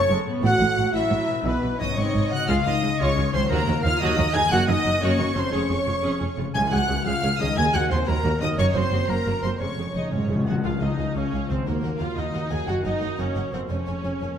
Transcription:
Already playing: F#2 G#3 C#4 F#4 C#6
0.09 F#1 F#2 G#3
0.26 A2 B3
0.30 A3
0.35 C#4
0.39 A1 A2 E4 F#5
0.44 A3 F#4 F#5
0.59 A1 A2
0.77 A1 A2
0.93 A1 A2 F#3 E4 E5
1.11 A1 A2
1.27 B2
1.31 F#3
1.36 B3
1.41 B1 B2 E3 B3 E4 B4
1.46 B4
1.62 B1 B2
1.77 B1 G#2 B2 C#4 D#4 C#5 D#5 D#6
1.84 F#3
1.88 C3
1.93 G#2 C4 D#4 C#5 D#5 C#6
1.97 G#1 C#4 C#5 D#5
2.14 G#1 G#2
2.30 C#3 F#4 F#5 F#6
2.35 G#3
2.40 C#4
2.45 F4 F5 F6
2.49 C#2 G#3 F4 F5
2.65 C#2 G#3 D#4 F4 D#5 D#6
2.82 C#2 F3 C#4
2.99 C#2 G#3 C#4 F4 C#5 C#6
3.17 C#2 G#3 F4
3.33 C#2 D#3 F3 C4 C#4 C5 C6
3.37 F#3
3.42 F#4
3.46 A#3 A#4
3.50 D#2 F#3 F#4 A#4 A#5
3.67 D#2 F#3 F#4
3.83 D#2 D#3 D#4 F4 F5 F6
4.00 D#2 F#3 D#4 F#4 D#5 D#6
4.17 D#2 F#3 F#4
4.33 D#2 F#2 D#3 D#4 G#4 G#5 G#6
4.38 F#3
4.43 C#4
4.47 F#2 A#4 F#5 F#6
4.51 F#1 A#3 F#4 F#5
4.67 F#1 F#2 A#3 D#4 F#4 D#5 D#6
4.85 F#1 F#2 F#3 C#4
5.01 F#1 F#2 A#3 C#4 F#4 C#5 C#6
5.18 F#1 F#2 A#3 F#4
5.34 F#1 F2 F#2 F#3 C4 C#4 C5 C6
5.39 G#3
5.43 C#4
5.51 F1 F2 C#4 G#4 C#5 C#6
5.69 F1 F2 C#4 G#4
5.86 F1 F2 G#3 F4
6.02 F1 F2 C#4 G#4
6.19 F1 F2 C#4 G#4
6.37 F1 F2 C#3 G#3 F4
6.41 G#3
6.46 C#4
6.51 C#4 G#4 C#5 G#5
6.55 C#2 C#3 G#5 G#6
6.71 C#2 C#4 F#4 G#4 F#5 F#6
6.88 C#2 C#4 G#4
7.05 C#2 C#4 F4 G#4 F5 F6
7.22 C#2 C#4 G#4
7.39 C#2 D#3 C#4 D#4 G#4 D#5 D#6
7.44 F#3
7.48 F#4
7.53 F#4 A#4
7.57 D#2 A#3 G#4 G#5 G#6
7.74 D#2 A#3 F#4 F#5 F#6
7.89 D#2 A#3 C4 F#4 C5 C6
8.07 D#2 A#3 F#4 A#4 A#5
8.24 D#2 A#3 F#4
8.40 D#2 F#2 A#3 D#4 F#4 D#5 D#6
8.45 F#3
8.50 F#4
8.54 A#4 C#5
8.58 F#1 F#2 A#3 C#4 F#4 C#5 C#6
8.74 F#1 F#2 A#3 C4 F#4 C5 C6
8.91 F#1 F#2 A#3 F#4
9.08 F#1 F#2 A#3 F#4 A#4 A#5
9.25 F#1 F#2 A#3 F#4
9.41 F#1 F2 F#2 A#3 C4 F#4 C5 C6
9.47 G#3
9.52 C#4
9.56 C#4 G#4 C#5
9.60 F1 F2 C#3 G#3 G#4 C#5 C#6
9.68 C#3
9.76 F1 F2 C#3 G#3 G#4
9.83 C#3
9.90 F1 C#3
9.94 F2 C#3 G#3 D#4 G#4 D#5
10.05 C#3
10.11 F1 G#2 C#3 G#3 C#4 G#4 C#5
10.20 C#3
10.28 F1 F#2 C#3 G#3 G#4
10.36 C#3
10.44 F2 C#3 G#3 F#4 G#4 F#5
10.48 F1 C#3 F3
10.56 F4
10.60 C#2 C#3 G#3 F4 G#4 F5
10.64 C#2 F4 G#4 F5
10.81 C#2 D#4 G#4 D#5 F5
10.98 C#2 G#4 F5
11.15 C#2 C#4 G#4 C#5 F5
11.32 C#2 G#4 F5
11.48 C#2 D#3 C4 G#4 C5 F5
11.53 F#3
11.57 D#4
11.62 D#2 A#3 F#4 A#4
11.66 D#2 A#3 A#4 F#5
11.83 D#2 A#4 F#5
11.99 D#2 F4 A#4 F5 F#5
12.16 D#2 D#4 A#4 D#5 F#5
12.33 D#2 A#4 F#5
12.50 D#2 F#2 G#4 A#4 F#5 G#5
12.55 F#3
12.59 C#4
12.64 F#2 A#4 F#5
12.68 F#1 F#4 A#4 F#5
12.84 F#1 F#2 D#4 A#4 D#5 F#5
13.01 F#1 F#2 A#4 F#5
13.17 F#1 F#2 C#4 A#4 C#5 F#5
13.35 F#1 F#2 A#4 F#5
13.52 F#1 F2 F#2 C4 A#4 C5 F#5
13.56 G#3
13.61 C#4
13.65 F2 C#4 C#5
13.69 F1 G#3 G#4 C#5 G#5
13.86 F1 F2 C#5 G#5
14.03 F1 F2 C#5 G#5
14.20 F1 F2 A#3 C#5 G#5

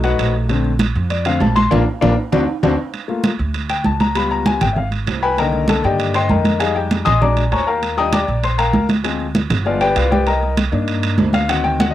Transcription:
Already playing: B1 F#3 A3 D#4
0.03 F#4 B4 D#5 F#5, high conga, high timbale
0.18 A#1, high conga, high timbale, low timbale
0.49 D3 A3 C4, high conga, high timbale
0.64 high conga
0.79 high conga, high timbale
0.95 F2, high conga
1.10 D5, high conga, high timbale
1.25 D3 A3 C4 F5, high conga, high timbale
1.40 A#1 A5, high conga, low timbale
1.56 C6, high conga, high timbale
1.71 A#1 A#3 D4 F4, low conga, high timbale
2.01 A#1 A#3 D4 F4, low conga, high timbale
2.32 D2 C4 D4 F#4, low conga, high timbale
2.63 D2 C4 D4 F#4, low conga, high timbale
2.94 high conga, high timbale
3.08 A3 A#3 F4, high conga
3.24 high conga, high timbale
3.39 D2, high conga
3.55 high conga, high timbale
3.70 G5, high conga, high timbale
3.85 C#2 A5, high conga
4.00 A#5, high conga, high timbale
4.15 G3 B3 F4 B5, high conga, high timbale
4.31 A#5, high conga
4.46 G#5, high conga, high timbale
4.61 G#1 G5, high conga, low conga, high timbale
4.73 E5, high conga, low conga
4.78 F5
4.91 high conga, high timbale
5.07 C2, high conga, high timbale, low timbale
5.23 B4 G5 G#5 B5
5.37 D3 D#3 A#3 A#4 D#5 G5 A#5, high conga, high timbale
5.52 high conga
5.68 A4 A5, high conga, high timbale
5.83 G2 G4 D5 D#5 G5, high conga
5.99 high conga, high timbale
6.14 C5 D#5 G5 C6, high conga, high timbale
6.29 F2 A#4 D#5 G5 A#5, high conga
6.45 high conga, high timbale
6.59 G3 G#3 D#4 G#4 D#5 F5 G#5, high conga, high timbale
6.76 G4 G5, high conga
6.91 high conga, high timbale
7.05 A#1 D#5 G#5 C6 D#6, high conga, low conga, high timbale
7.21 F#3 G#3 D4 D5 G#5 A#5 D6, high conga, low conga
7.37 high conga, high timbale
7.52 D#2 C#5 G#5 A#5 C#6, high conga, high timbale, low timbale
7.67 A#4 F5 G5 A#5
7.82 high conga, high timbale
7.97 F3 G3 D4 D#5 G5 A#5 D#6, high conga
8.13 D5 G5 A#5 D6, high conga, high timbale
8.28 A#1, high conga
8.43 C5 C6, high conga, high timbale
8.58 A#4 F5 G5 A#5, high conga, high timbale
8.74 D2, high conga
8.89 high conga, high timbale
9.04 F3 G#3 C4, high conga, high timbale
9.20 high conga
9.35 high conga, high timbale
9.50 G1, high conga, low conga, high timbale
9.65 F3 G#3 B3 F4 B4 D5 F5, high conga
9.81 G4 B4 D5 G5, high conga, high timbale
9.96 C2 F4 B4 D5 F5, high conga, high timbale
10.12 G4 B4 D5 G5, high conga
10.27 A#4 D#5 G5 A#5, high conga, high timbale
10.43 high conga
10.57 high conga, high timbale
10.72 G2 A#3 D4 D#4, high conga
10.88 high conga, high timbale
11.03 high conga, high timbale
11.18 D2, high conga, low timbale
11.33 F5, high conga, high timbale
11.48 D#3 F#3 C4 F#5, high conga, high timbale
11.64 G5, high conga
11.80 F#5, high conga, high timbale
11.91 D#5

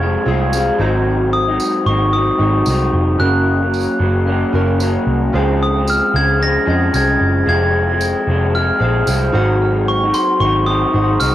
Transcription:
Already playing: F1 C4 F4 G#4 G#6
0.00 F3 G#3 C4 F4
0.25 C2 F3 G#3 C4 F4 G#4
0.30 F4
0.52 F3 G#3 C4, tambourine
0.56 F4
0.78 G#1 G#2 D#3 F#3 G#3 C4 D#4 F#4 C5
1.33 D#6
1.48 C4 D#4
1.52 F#3
1.60 tambourine
1.86 G#1 D#3 F#3 C4 D#4 C#6
2.13 D#3 F#3 C4 D#6
2.17 D#4
2.38 G#1 D#3 F#3 G#3 C4 D#4 F#4 G#4
2.43 D#4
2.66 C2 D#3 F#3 C4, tambourine
2.70 D#4
2.93 F1
3.18 F#1 F#2 C#3 F#3 A#3 C#4 F#4 A#4 F#6
3.22 C#4
3.62 A#3 C#4
3.66 F#3
3.74 tambourine
3.99 F#1 C#3 F#3 A#3
4.04 C#4
4.26 C#3 F#3 A#3 C#4
4.53 F#1 C#3 F#3 A#3 C#4 F#4 A#4
4.57 C#4
4.80 C#3 F#3 A#3 C#4, tambourine
5.07 C2
5.33 C#2 C#3 F3 G#3 C#4 F4 G#4 C5 F5
5.37 C4
5.63 D#6
5.76 G#3 C4
5.80 F3
5.87 F6, tambourine
6.14 C#2 C#3 F3 G#3 C4 G#6
6.39 C#3 F3 G#3 C4 A#6
6.65 F2 C#3 F3 C#4 F4 G#4 C5 D#5
6.69 G#3 C4
6.93 C2 C#3 F3 G#3 C4 G#6, tambourine
7.21 F#1
7.46 F1 F2 C3 F3 G#3 G#4 C5 F5 G#6
7.50 C4
7.89 G#3 C4
7.93 F3
8.01 tambourine
8.27 F1 C3 F3 G#3 C4
8.54 C3 F3 G#3 F6
8.58 C4
8.80 A#1 C3 F3 G#3 G#4 C5 F5
8.84 C4
9.07 C2 C3 F3 G#3 C4, tambourine
9.32 G#1 G#2 D#3 F#3 C4 D#4 F#4 G#4 C5 F#5
9.36 D#4
9.88 C#6
10.03 F#3 C4 D#4
10.14 C6, tambourine
10.40 G#1 D#3 F#3 C4 C#6
10.44 D#4
10.66 D#3 F#3 C4 D#4 D#6
10.93 G#1 D#3 F#3 C4 D#4 F#4 G#4 C5 F#5
11.19 C2 D#3 F#3 C4 D#4 F6, tambourine

